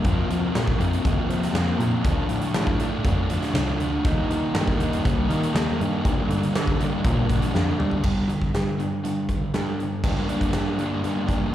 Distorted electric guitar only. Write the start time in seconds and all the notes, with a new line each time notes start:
0.05 F2 C3 F3 A#3 C4
0.30 F3 A#3 C4
0.54 C3 F3 A#3 C4
0.80 F2 C3 F3 A#3 C4
1.04 C3 F3 A#3 C4
1.30 F3 A#3 C4
1.55 F2 C3 F3 A#3 C4
1.79 F3 A#3 C4
2.04 D3 F3 A3 D4
2.29 F3 A3 D4
2.54 D3 F3 A3 D4
2.79 D3 F3 A3 D4
3.04 D3 F3 A3 D4
3.29 F3 A3 D4
3.55 D3 F3 A3 D4
3.80 F3 A3 D4
4.05 D#3 G3 A#3 D#4
4.29 G3 A#3 D#4
4.54 D#3 G3 A#3 D#4
4.79 D#3 G3 A#3 D#4
5.04 D#3 G3 A#3 D#4
5.29 G3 A#3 D#4
5.53 D#3 G3 A#3 D#4
5.79 G3 A#3 D#4
6.03 G2 D3 G3 A#3 D4
6.30 G3 A#3 D4
6.53 D3 G3 A#3 D4
6.79 G2 D3 G3 A#3 D4
7.04 D3 G3 A#3 D4
7.29 G3 A#3 D4
7.54 G2 D3 G3 A#3 D4
7.78 G3 A#3 D4
8.04 G2 D3 G3
8.29 G2 D3
8.54 G2 D3
8.78 G2 D3
9.03 G2 D3
9.29 G2 D3
9.54 G2 D3 G3
9.79 G2 D3
10.04 G2 D3 G3 A#3 D4
10.29 G2 D3 G3 A#3 D4
10.53 G2 D3 G3 A#3 D4
10.78 G2 D3 G3 A#3 D4
11.03 G2 D3 G3 A#3 D4
11.27 G2 D3 G3 A#3 D4
11.51 G2